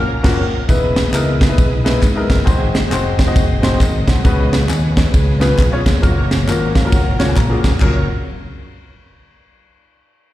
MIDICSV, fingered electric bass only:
0, 0, Header, 1, 2, 480
1, 0, Start_track
1, 0, Key_signature, 6, "major"
1, 0, Tempo, 446097
1, 735, Time_signature, 4, 2, 24, 8
1, 11118, End_track
2, 0, Start_track
2, 0, Title_t, "Fingered electric bass"
2, 0, Program_c, 0, 33
2, 259, Note_on_c, 0, 30, 103
2, 460, Note_off_c, 0, 30, 0
2, 740, Note_on_c, 0, 28, 92
2, 1146, Note_off_c, 0, 28, 0
2, 1210, Note_on_c, 0, 37, 97
2, 1620, Note_off_c, 0, 37, 0
2, 1701, Note_on_c, 0, 35, 85
2, 2106, Note_off_c, 0, 35, 0
2, 2179, Note_on_c, 0, 44, 93
2, 2430, Note_off_c, 0, 44, 0
2, 2470, Note_on_c, 0, 30, 89
2, 2626, Note_off_c, 0, 30, 0
2, 2653, Note_on_c, 0, 32, 107
2, 3062, Note_off_c, 0, 32, 0
2, 3124, Note_on_c, 0, 29, 95
2, 3536, Note_off_c, 0, 29, 0
2, 3612, Note_on_c, 0, 30, 91
2, 4021, Note_off_c, 0, 30, 0
2, 4086, Note_on_c, 0, 32, 98
2, 4342, Note_off_c, 0, 32, 0
2, 4384, Note_on_c, 0, 36, 96
2, 4543, Note_off_c, 0, 36, 0
2, 4570, Note_on_c, 0, 37, 116
2, 5047, Note_off_c, 0, 37, 0
2, 5047, Note_on_c, 0, 39, 90
2, 5458, Note_off_c, 0, 39, 0
2, 5527, Note_on_c, 0, 37, 97
2, 5938, Note_off_c, 0, 37, 0
2, 6005, Note_on_c, 0, 35, 98
2, 6262, Note_off_c, 0, 35, 0
2, 6302, Note_on_c, 0, 29, 93
2, 6461, Note_off_c, 0, 29, 0
2, 6486, Note_on_c, 0, 30, 105
2, 6965, Note_off_c, 0, 30, 0
2, 6965, Note_on_c, 0, 32, 94
2, 7377, Note_off_c, 0, 32, 0
2, 7448, Note_on_c, 0, 30, 82
2, 7703, Note_off_c, 0, 30, 0
2, 7746, Note_on_c, 0, 37, 87
2, 7903, Note_off_c, 0, 37, 0
2, 7925, Note_on_c, 0, 34, 95
2, 8182, Note_off_c, 0, 34, 0
2, 8219, Note_on_c, 0, 29, 92
2, 8379, Note_off_c, 0, 29, 0
2, 8409, Note_on_c, 0, 30, 97
2, 8688, Note_off_c, 0, 30, 0
2, 11118, End_track
0, 0, End_of_file